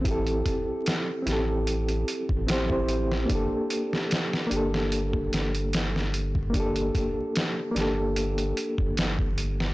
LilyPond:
<<
  \new Staff \with { instrumentName = "Reed electric piano" } { \time 4/4 \key g \dorian \tempo 4 = 74 <c' e' g' a'>4. <c' e' g' a'>4. <c' e' g' c''>16 <c' e' g' c''>8. | <bes d' g' a'>4. <bes d' g' a'>2~ <bes d' g' a'>8 | <bes d' g' a'>4. <bes d' g' a'>2~ <bes d' g' a'>8 | }
  \new Staff \with { instrumentName = "Sub bass" } { \clef bass \time 4/4 \key g \dorian a,,8 r4 a,,4 r16 a,,4~ a,,16 | g,,16 r4 r16 g,,4 g,,4.~ | g,,8 r4 g,,4 r16 g,,4~ g,,16 | }
  \new DrumStaff \with { instrumentName = "Drums" } \drummode { \time 4/4 <hh bd>16 hh16 <hh bd>8 <hh sn>8 <hh sn>8 hh16 hh16 hh16 bd16 <hh sn>16 bd16 hh16 sn16 | <hh bd>8 hh16 sn16 <hh sn>16 sn16 hh16 sn16 hh16 bd16 <hh sn>16 hh16 <hh sn>16 sn16 hh16 bd16 | <hh bd>16 hh16 <hh bd>8 <hh sn>8 <hh sn>8 hh16 hh16 hh16 bd16 <hh sn>16 bd16 hh16 sn16 | }
>>